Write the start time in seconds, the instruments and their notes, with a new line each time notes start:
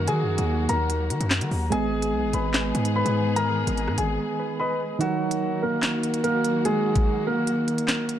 Already playing: synth keys D#3 D#4 F#4 A#4, string section D#3 F#3 A#3 F#4
0.08 808-style bass D#3, grand piano G#4 G#5, closed hi-hat
0.23 808-style bass F#2
0.38 808-style bass D#2, closed hi-hat
0.69 808-style bass D#2, grand piano A#4 A#5, closed hi-hat
0.90 closed hi-hat
1.10 808-style bass D#3, closed hi-hat
1.20 808-style bass F#2, closed hi-hat
1.31 snare, clap
1.41 808-style bass D#3, closed hi-hat
1.51 808-style bass D#2, open hi-hat
1.70 808-style bass G#1, string section D#3 G#3 B3 G#4, synth keys G#3 B3 G#4 D#5, grand piano G#4 G#5, closed hi-hat
2.02 closed hi-hat
2.13 808-style bass B1
2.23 808-style bass G#1
2.33 808-style bass G#1, grand piano B4 B5, closed hi-hat
2.54 snare, clap
2.75 808-style bass G#2, closed hi-hat
2.85 closed hi-hat
2.96 grand piano B4 B5
3.05 808-style bass G#2, closed hi-hat
3.36 grand piano A#4 A#5, closed hi-hat
3.67 808-style bass G#1, closed hi-hat
3.77 closed hi-hat
3.88 808-style bass G#2, cross-stick
3.98 808-style bass G#1, grand piano G#4 G#5, closed hi-hat
4.39 synth keys B4
4.60 grand piano B4 B5, synth keys D#5
4.99 synth keys D#3 D#4 F#4 A#4, string section D#3 F#3 A#3 F#4, grand piano F#3 F#4, closed hi-hat
5.31 closed hi-hat
5.63 grand piano A#3 A#4
5.83 snare, clap, closed hi-hat
6.03 closed hi-hat
6.14 closed hi-hat
6.24 grand piano A#3 A#4, closed hi-hat
6.44 closed hi-hat
6.65 grand piano G#3 G#4, closed hi-hat
6.96 kick, closed hi-hat
7.27 grand piano A#3 A#4
7.47 closed hi-hat
7.68 closed hi-hat
7.78 closed hi-hat
7.88 snare, clap, closed hi-hat
8.09 closed hi-hat